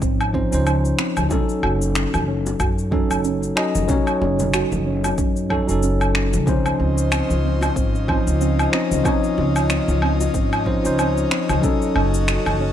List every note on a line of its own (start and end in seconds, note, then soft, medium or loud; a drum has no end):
0.00 0.42 G#1 medium
0.00 0.33 F3 medium
0.00 0.19 C4 medium
0.00 0.34 C#4 medium
0.00 0.35 D#4 medium
0.00 0.32 C#5 medium
0.00 1.33 D#5 loud
0.00 kick loud
0.00 cabasa medium
0.21 cabasa soft
0.21 low woodblock medium
0.33 0.48 F3 medium
0.33 0.52 C4 medium
0.33 0.48 C#4 medium
0.33 0.48 D#4 medium
0.33 0.49 C5 medium
0.33 kick medium
0.33 high conga medium
0.51 0.91 C#2 medium
0.51 1.27 F3 medium
0.51 1.27 C#4 medium
0.51 1.28 D#4 medium
0.51 1.29 C5 medium
0.51 cabasa medium
0.66 0.76 D#4 medium
0.66 cabasa medium
0.66 low woodblock medium
0.85 cabasa soft
0.98 1.15 C4 medium
0.98 finger snap medium
1.17 1.26 C#2 medium
1.17 high conga medium
1.17 cabasa medium
1.17 low woodblock medium
1.29 2.88 F#3 medium
1.29 2.89 C#4 medium
1.29 1.48 C#4 medium
1.29 2.89 D#4 medium
1.29 2.90 A4 loud
1.29 kick loud
1.29 high bongo medium
1.29 low conga loud
1.29 cabasa medium
1.49 cabasa soft
1.63 2.03 F#1 loud
1.63 1.73 F#4 medium
1.63 low woodblock medium
1.82 cabasa medium
1.95 2.12 C#4 medium
1.95 finger snap medium
1.95 cabasa medium
2.14 2.52 F#1 medium
2.14 high conga medium
2.14 cabasa soft
2.14 low woodblock medium
2.28 2.45 C#4 medium
2.46 high bongo medium
2.46 cabasa medium
2.60 3.00 F#2 loud
2.60 2.70 F#4 medium
2.60 kick loud
2.60 cabasa medium
2.60 low woodblock medium
2.78 cabasa soft
2.91 3.53 F#3 medium
2.91 3.53 C#4 medium
2.91 3.09 C#4 medium
2.91 3.54 D#4 medium
2.91 3.54 A4 medium
2.91 kick loud
2.91 high conga medium
3.11 3.49 F#1 medium
3.11 cabasa medium
3.11 low woodblock medium
3.24 3.42 C#4 medium
3.24 cabasa medium
3.43 cabasa soft
3.56 3.85 F#3 medium
3.56 3.86 C#4 medium
3.56 3.86 D#4 medium
3.56 3.67 F#4 medium
3.56 3.86 D#5 loud
3.56 finger snap medium
3.56 low woodblock medium
3.75 3.84 F#1 medium
3.75 high conga medium
3.75 cabasa medium
3.87 5.46 F#3 medium
3.87 5.47 C#4 medium
3.87 4.06 C#4 medium
3.87 5.47 D#4 medium
3.87 5.48 C#5 loud
3.87 kick loud
3.87 high bongo medium
3.87 low conga medium
3.87 cabasa medium
4.07 cabasa soft
4.07 low woodblock medium
4.21 4.62 F#1 medium
4.21 4.39 C#4 medium
4.21 high bongo medium
4.39 low conga medium
4.39 cabasa medium
4.54 4.64 F#4 medium
4.54 finger snap medium
4.54 cabasa medium
4.54 low woodblock medium
4.72 5.10 F#1 medium
4.72 high conga medium
4.72 cabasa soft
4.86 5.03 C#4 medium
5.04 high bongo medium
5.04 cabasa medium
5.04 low woodblock medium
5.18 5.58 F#2 medium
5.18 5.36 C#4 medium
5.18 kick loud
5.18 cabasa medium
5.36 cabasa soft
5.50 5.64 F#3 medium
5.50 5.64 C#4 medium
5.50 5.65 D#4 medium
5.50 5.60 F#4 medium
5.50 5.65 A4 medium
5.50 kick medium
5.50 high conga medium
5.50 low woodblock medium
5.67 6.35 F#1 medium
5.67 6.43 F#3 medium
5.67 6.44 C#4 medium
5.67 6.44 D#4 medium
5.67 6.45 A4 medium
5.67 cabasa medium
5.83 5.99 C#4 medium
5.83 cabasa medium
6.01 cabasa soft
6.01 low woodblock medium
6.15 6.33 C#4 medium
6.15 finger snap medium
6.33 6.72 C#2 medium
6.33 high conga medium
6.33 cabasa medium
6.46 8.05 F3 medium
6.46 6.64 C4 medium
6.46 8.05 C#4 medium
6.46 12.73 C#4 medium
6.46 8.06 D#4 medium
6.46 11.60 F4 medium
6.46 9.03 C5 medium
6.46 8.06 C5 loud
6.46 12.73 D#5 medium
6.46 kick loud
6.46 high bongo medium
6.46 low conga medium
6.46 cabasa medium
6.66 cabasa soft
6.66 low woodblock medium
6.79 7.20 C#2 medium
6.79 6.97 C4 medium
6.98 cabasa medium
7.12 7.28 C4 medium
7.12 finger snap medium
7.12 cabasa medium
7.12 low woodblock medium
7.30 7.68 C#2 medium
7.30 high conga medium
7.30 cabasa soft
7.44 7.61 C4 medium
7.61 high bongo medium
7.61 cabasa medium
7.61 low woodblock medium
7.76 8.16 G#1 medium
7.76 7.94 C4 medium
7.76 kick loud
7.76 cabasa medium
7.95 cabasa soft
8.08 8.69 F3 medium
8.08 8.25 C4 medium
8.08 8.70 C#4 medium
8.08 8.70 D#4 medium
8.08 8.70 C5 medium
8.08 kick loud
8.08 high conga medium
8.08 low woodblock medium
8.27 8.65 C#2 medium
8.27 cabasa medium
8.41 8.57 C4 medium
8.41 cabasa medium
8.59 cabasa soft
8.59 low woodblock medium
8.72 9.02 F3 medium
8.72 8.91 C4 medium
8.72 9.02 C#4 medium
8.72 9.02 D#4 medium
8.72 9.02 D#5 loud
8.72 finger snap medium
8.92 9.00 C#2 medium
8.92 high conga medium
8.92 cabasa medium
9.04 10.62 F3 medium
9.04 9.22 C4 medium
9.04 10.63 C#4 medium
9.04 10.64 D#4 medium
9.04 10.64 C#5 loud
9.04 kick loud
9.04 high bongo medium
9.04 low conga medium
9.04 cabasa medium
9.04 low woodblock medium
9.24 cabasa soft
9.38 9.78 C#2 medium
9.38 9.54 C4 medium
9.38 high bongo medium
9.56 cabasa medium
9.56 low woodblock medium
9.70 9.87 C4 medium
9.70 finger snap medium
9.70 cabasa medium
9.88 10.27 C#2 medium
9.88 high conga medium
9.88 cabasa soft
10.02 10.19 C4 medium
10.02 low woodblock medium
10.21 high bongo medium
10.21 cabasa medium
10.34 10.75 G#1 medium
10.34 10.51 C4 medium
10.34 kick loud
10.34 cabasa medium
10.53 cabasa soft
10.53 low woodblock medium
10.66 10.80 F3 medium
10.66 10.84 C4 medium
10.66 10.80 C#4 medium
10.66 10.81 D#4 medium
10.66 10.81 C5 medium
10.66 kick medium
10.66 high conga medium
10.83 11.23 C#2 medium
10.83 11.59 F3 medium
10.83 11.60 C#4 medium
10.83 11.60 D#4 medium
10.83 11.61 C5 medium
10.83 cabasa medium
10.99 11.16 C4 medium
10.99 cabasa medium
10.99 low woodblock medium
11.17 cabasa soft
11.31 11.48 C4 medium
11.31 finger snap medium
11.49 11.58 C#2 medium
11.49 high conga loud
11.49 cabasa medium
11.49 low woodblock medium
11.61 12.73 F#3 loud
11.61 12.73 C#4 medium
11.61 11.81 C#4 medium
11.61 12.73 D#4 medium
11.61 12.73 F#4 medium
11.61 12.73 A4 medium
11.61 12.73 A4 loud
11.61 kick loud
11.61 high bongo medium
11.61 low conga medium
11.61 cabasa medium
11.82 cabasa soft
11.96 12.36 F#1 loud
11.96 12.12 C#4 medium
11.96 low woodblock medium
12.14 cabasa medium
12.28 12.45 C#4 medium
12.28 finger snap medium
12.28 cabasa medium
12.46 12.73 F#1 loud
12.46 high conga medium
12.46 cabasa soft
12.46 low woodblock medium
12.60 12.73 C#4 medium